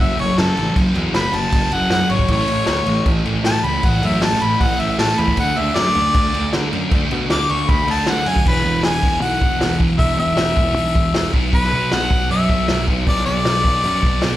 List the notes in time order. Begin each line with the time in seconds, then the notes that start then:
Already playing: F#2 C#3 F#3
0.00 F#1 E5
0.17 F#1 F#3 C#5, crash
0.23 C#3
0.37 F#2 C#3 A4, snare, crash
0.42 F#3
0.56 A1 F#3, crash
0.61 C#3
0.74 F#1 F#2 C#3, kick, crash
0.79 F#3
0.94 E2 F#3, crash
0.99 C#3
1.13 F#1 F#2 C#3 B5, snare, crash
1.18 F#3
1.33 F#1 A5, crash
1.52 F#1, kick, crash
1.70 F#1 F#3 F#5, crash
1.75 C#3
1.90 F#2 C#3 F#5, snare, crash
1.96 F#3
2.10 G#1 F#3 C#5, crash
2.15 C#3
2.19 kick
2.28 A1 A2 E3, kick, crash
2.32 A3 C#5
2.48 A1 A3, crash
2.53 E3
2.66 D2 A2 E3, snare, crash
2.72 A3
2.86 A1, crash
3.05 A1, kick, crash
3.25 A1 A3, crash
3.31 E3
3.44 A2 E3 A5, snare, crash
3.49 A3
3.64 C#2 A3 B5, crash
3.69 E3
3.83 A1 A2 E3 F#5, kick, crash
3.88 A3
4.02 F#2 A3 E5, crash
4.08 E3
4.22 A1 A2 E3 A5, snare, crash
4.27 A3
4.41 A1 B5, crash
4.60 A1 F#5, kick, crash
4.80 A1 A3 E5, crash
4.85 E3
4.99 A2 E3 A5, snare, crash
5.04 A3
5.18 E2 A3 B5, crash
5.25 E3, kick
5.37 D2 D3 A3 F#5, kick, crash
5.41 D4
5.56 D2 D4 E5, crash
5.61 A3
5.74 F#2 D3 A3 D5, snare, crash
5.79 D4
5.95 D2, crash
6.14 D2, kick, crash
6.34 D2 D4, crash
6.39 A3
6.52 D3 A3, snare, crash
6.57 D4
6.72 F#2 D4, crash
6.76 A3
6.91 D2 D3 A3 D4, kick, crash
7.10 B2 D4, crash
7.16 A3
7.29 D2 D3 A3 D6, snare, crash
7.34 D4
7.50 D2 C#6, crash
7.69 D2 B5, kick, crash
7.87 D2 D4 A5, crash
7.93 A3
8.06 D3 A3, snare, crash
8.10 D4 F#5
8.25 F#2 D4 G#5, crash
8.30 A3
8.36 kick
8.45 E1 E2 B2 E3 B4, kick, crash
8.56 snare
8.64 E1 E2 B2 E3
8.82 E1 E2 B2 E3 G#5, snare, open hi-hat
9.02 E1 E2 B2 E3, kick
9.21 B1 E2 B2 E3 F#5, open hi-hat
9.41 E1 E2 B2 E3, kick
9.59 E1 E2 B2 E3, snare, open hi-hat
9.80 E1 E2 B2 E3, kick
9.98 E1 E2 B2 E3 E5, kick, open hi-hat
10.18 E1 E2 B2 E3 E5
10.37 E1 E2 B2 E3, snare, open hi-hat
10.57 E1 E2 B2 E3, kick
10.76 B1 E2 B2 E3, open hi-hat
10.95 E1 E2 B2 E3, kick
11.14 E1 E2 B2 E3, snare, open hi-hat
11.33 B1 B2 F#3 B3, kick
11.52 B1 B2 F#3 B3 B4, kick, open hi-hat
11.63 snare
11.73 B1 B2 F#3 B3
11.91 B1 B2 F#3 B3 F#5, snare, open hi-hat
12.10 B1 B2 F#3 B3, kick
12.30 F#2 B2 F#3 B3 E5, open hi-hat
12.49 B1 B2 F#3 B3, kick
12.68 B1 B2 F#3 B3, snare, open hi-hat
12.87 B1 B2 F#3 B3, kick
13.07 B1 B2 F#3 B3 D5, kick, open hi-hat
13.16 snare
13.26 B1 B2 F#3 B3 D5
13.45 B1 B2 F#3 B3, snare, open hi-hat
13.65 B1 B2 F#3 B3, kick
13.83 F#2 B2 F#3, open hi-hat
13.87 B3
14.03 B1 B2 F#3 B3, kick
14.22 B1 B2 F#3 B3, snare, open hi-hat